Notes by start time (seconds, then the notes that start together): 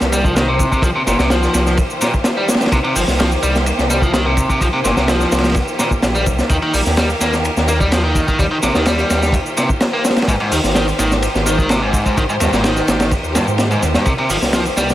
Already playing: D#3 A#3 G4 C5
0.01 C2, snare, shaker
0.12 G3, snare, ride, shaker
0.24 F3, kick, shaker
0.36 D#3, snare, ride, shaker
0.48 C3
0.59 kick, ride, shaker
0.72 C3, kick, shaker
0.82 C2 F3, kick, ride, shaker
0.96 C3
1.07 G1 A#2, snare, ride, shaker
1.19 C2 C3, snare, shaker
1.30 F3, snare, ride, shaker
1.43 snare, shaker
1.54 C2, snare, ride, shaker
1.66 snare, shaker
1.77 kick, ride, shaker
1.90 shaker
2.01 A#2, snare, ride, shaker
2.14 kick, shaker
2.24 snare, ride, shaker
2.37 G3
2.48 snare, ride, shaker
2.54 snare, ride
2.61 snare, ride, shaker
2.66 snare, ride
2.72 C2 C3, kick, ride, shaker
2.84 C3, ride
2.96 G1 F3, open hi-hat, shaker
3.08 C2, snare, shaker
3.19 F3, snare, ride, shaker
3.32 ride, shaker
3.42 C2 G3, ride, shaker
3.55 snare, shaker
3.66 ride, shaker
3.79 C2, snare, shaker
3.90 G3, snare, ride, shaker
4.02 F3, kick, shaker
4.14 D#3, snare, ride, shaker
4.26 C3
4.37 kick, ride, shaker
4.49 C3, kick, shaker
4.61 C2 F3, kick, ride, shaker
4.73 C3
4.84 G1 A#2, snare, ride, shaker
4.97 C2 C3, snare, shaker
5.08 F3, snare, ride, shaker
5.21 snare, shaker
5.32 C2, snare, ride, shaker
5.38 snare, ride
5.44 snare, ride, shaker
5.50 snare, ride
5.54 kick, ride, shaker
5.68 shaker
5.79 A#2, snare, ride, shaker
5.91 A#1, kick, shaker
6.02 A#1, snare, ride, shaker
6.15 G3, shaker
6.26 C2, kick, ride, shaker
6.39 snare, shaker
6.49 D#2 D#3 A#4, kick, ride, shaker
6.62 D#3, ride
6.74 A#1 G3, open hi-hat, shaker
6.86 D#2, snare, shaker
6.97 G3, snare, ride, shaker
7.10 ride, shaker
7.21 D#2 A#3, snare, ride, shaker
7.33 snare, shaker
7.45 ride, shaker
7.57 D#2, snare, shaker
7.68 A#3, snare, ride, shaker
7.80 G3, kick, shaker
7.92 F3, snare, ride, shaker
8.04 D#3
8.15 kick, ride, shaker
8.28 D#3, kick, shaker
8.39 D#2 G3 C5, kick, ride, shaker
8.51 D#3
8.63 A#1 C3, snare, ride, shaker
8.75 D#2 D#3, snare, shaker
8.86 G3, snare, ride, shaker
8.98 snare, shaker
9.10 D#2, snare, ride, shaker
9.23 snare, shaker
9.32 kick, ride, shaker
9.46 shaker
9.57 C3, snare, ride, shaker
9.69 kick, shaker
9.80 snare, ride, shaker
9.93 A#3
10.05 snare, ride, shaker
10.10 snare, ride
10.16 snare, ride, shaker
10.22 snare, ride
10.28 G#1 G#2 D#3 G4, kick, ride, shaker
10.40 G#2, ride
10.52 D#2 D#3, open hi-hat, shaker
10.64 G#1, snare, shaker
10.75 D#3, snare, ride, shaker
10.88 ride, shaker
10.99 G#1 D#3, snare, ride, shaker
11.12 snare, shaker
11.22 ride, shaker
11.35 G#1, snare, shaker
11.46 D#3, snare, ride, shaker
11.58 D#3, kick, shaker
11.69 C3, snare, ride, shaker
11.82 G#2
11.93 kick, ride, shaker
12.06 G#2, kick, shaker
12.17 G#1 D#3, kick, ride, shaker
12.29 G#2, shaker
12.40 D#2 G2, snare, ride, shaker
12.53 G#1 G#2, snare, shaker
12.64 D#3, snare, ride, shaker
12.76 snare, shaker
12.88 G#1, snare, ride, shaker
13.00 snare, ride, shaker
13.11 kick, ride, shaker
13.24 D#2, shaker
13.35 G2, snare, ride, shaker
13.48 G#2, shaker
13.58 snare, ride, shaker
13.71 G#2, ride, shaker
13.82 D#2, snare, ride, shaker
13.94 G2, snare, ride, shaker
14.06 C2 C3 A#3, kick, ride, shaker
14.18 C3, ride
14.30 G1 F3, open hi-hat, shaker
14.42 C2, snare, shaker
14.53 F3, snare, ride, shaker
14.65 ride, shaker
14.77 C2 G3, snare, ride, shaker
14.89 snare, shaker